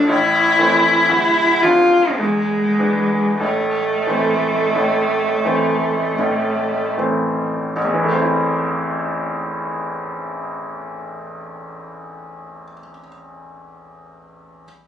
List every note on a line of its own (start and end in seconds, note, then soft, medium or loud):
0.00 0.09 A1 soft
0.00 0.09 A2 soft
0.00 0.11 F3 soft
0.00 0.12 A3 soft
0.00 0.11 D4 soft
0.09 0.56 A1 medium
0.09 0.57 A2 soft
0.09 1.64 E4 medium
0.59 1.05 E3 soft
0.59 1.05 A3 soft
0.59 1.05 C4 soft
1.09 1.61 D1 soft
1.09 1.61 D2 soft
1.62 2.15 F3 soft
1.62 2.16 C4 soft
1.62 2.16 D4 soft
1.62 2.19 F4 medium
2.17 2.76 E1 soft
2.17 2.76 E2 soft
2.17 3.39 G#3 medium
2.79 3.37 E3 soft
2.79 3.37 B3 soft
2.79 3.38 D4 soft
3.40 4.05 A1 soft
3.40 4.04 A2 soft
3.40 6.92 A3 medium
4.07 4.71 E3 soft
4.07 4.71 A3 soft
4.07 4.71 C4 soft
4.75 5.43 A1 soft
4.75 5.43 A2 soft
5.45 6.14 E3 soft
5.45 6.15 A3 soft
5.45 6.15 C4 soft
6.19 6.94 A1 soft
6.19 6.94 A2 soft
6.98 7.72 E3 soft
6.98 7.72 A3 soft
6.98 7.72 C4 soft
7.76 12.62 A1 soft
7.85 12.71 E2 soft
7.94 12.80 E3 soft
8.04 12.90 A3 soft
8.12 12.98 C4 soft
8.22 13.08 E4 soft